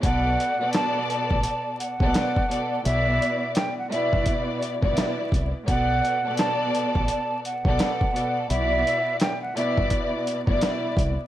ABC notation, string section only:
X:1
M:4/4
L:1/16
Q:"Swing 16ths" 1/4=85
K:Bm
V:1 name="String section"
[B,,B,Ad]3 [B,,B,Ad]6- [B,,B,Ad] z [B,,B,Ad]3 [B,,B,Ad]2 | [B,,B,Ed]4- [B,,B,Ed] z [B,,B,Ed]4- [B,,B,Ed] [B,,B,Ed]4 z | [B,,B,Ad]3 [B,,B,Ad]6- [B,,B,Ad] z [B,,B,Ad]3 [B,,B,Ad]2 | [B,,B,Ed]4- [B,,B,Ed] z [B,,B,Ed]4- [B,,B,Ed] [B,,B,Ed]4 z |]